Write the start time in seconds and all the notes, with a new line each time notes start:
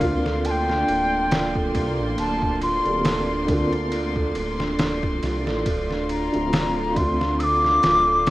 Already playing: D3 A#3 D4 A4 D5 F5 C6
0.00 D2 A#3 C4 F4, kick, ride
0.04 F4
0.25 A4, snare
0.44 A4 A5, ride
0.50 G5
0.68 D4, snare
0.88 D1 D4, ride
1.12 D4
1.31 F4, snare, ride
1.55 A4, kick
1.74 C2 A4, kick, ride
1.99 A1 D4
2.18 D1 D4 A5, ride
2.42 D4, kick
2.62 F4 C6, ride
2.85 D1 D3 A#3 C4 G4 A4, ride
3.05 A4, snare, ride
3.29 D4
3.47 D2 D3 A#3 D4, kick, ride
3.51 C4 F4
3.73 D4, ride
3.92 F4, ride
4.16 A4, kick
4.35 D1 A4, ride
4.60 D4, snare
4.79 D4, snare, ride
5.03 D4, kick
5.23 C2 F4, snare, ride
5.46 A1 A4, snare
5.66 D1 F4 A4, kick, ride
5.90 D4, snare
6.09 D4 A#5, ride
6.33 D1 D3 A3 C4 D4 F4, ride
6.53 F4, snare, ride
6.77 A4
6.95 D2 D3 A3 C6, kick, ride
6.99 C4 F4
7.20 D4, snare
7.39 D4 E6, ride
7.43 D6
7.64 D4, snare
7.83 D1 F4, snare, ride
8.07 A4
8.26 D6, ride